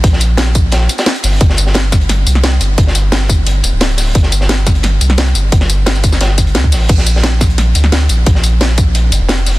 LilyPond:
<<
  \new Staff \with { instrumentName = "Sub bass" } { \clef bass \time 4/4 \key bes \major \tempo 4 = 175 bes,,2~ bes,,8 r4 g,,8 | g,,2~ g,,8 c,4 g,,8 | g,,2~ g,,8 e,,16 d,,4~ d,,16 | g,,2~ g,,8 c,4 g,,8 |
g,,2. d,8 a,,8 | bes,,2~ bes,,8 d,4 bes,,8 | bes,,2~ bes,,8 g,,16 f,,4~ f,,16 | }
  \new DrumStaff \with { instrumentName = "Drums" } \drummode { \time 4/4 <hh bd>16 sn16 <hh tamb>8 <hh sn>16 sn16 <hh hho bd tamb>8 <hh sn>16 sn16 <hh tamb>16 <hh sn tamb>16 <hh sn>16 hh16 <hh hho sn tamb>8 | <hh bd>16 sn16 <hh tamb>16 sn16 <hh sn>8 <hh bd sn tamb>16 hh16 <hh sn>8 <hh tamb>16 sn16 <hh sn>16 hh16 <hh tamb>8 | <hh bd>16 sn16 <hh tamb>8 <hh sn>16 sn16 <hh hho bd tamb>8 hh8 <hh tamb>8 <hh sn>16 hh16 <hh hho sn tamb>8 | <hh bd>16 sn16 <hh tamb>16 sn16 <hh sn>8 <hh bd sn tamb>16 hh16 <hh sn>8 <hh tamb>16 sn16 <hh sn>16 hh16 <hh tamb>8 |
<hh bd>16 sn16 <hh tamb>8 <hh sn>16 <sn tamb>16 <hh hho bd tamb>16 <sn tamb>16 <hh sn>8 <hh bd tamb>16 hh16 <hh sn>16 bd16 <hh hho sn tamb>8 | <cymc hh bd>16 sn16 <hh tamb>16 sn16 <hh sn>8 <hh bd sn tamb>16 hh16 <hh sn>8 <hh tamb>16 sn16 <hh sn>16 hh16 <hh tamb>8 | <hh bd>16 sn16 <hh tamb>8 <hh sn>16 sn16 <hh hho bd tamb>8 hh8 <hh tamb>8 <hh sn>16 hh16 <hh hho sn tamb>8 | }
>>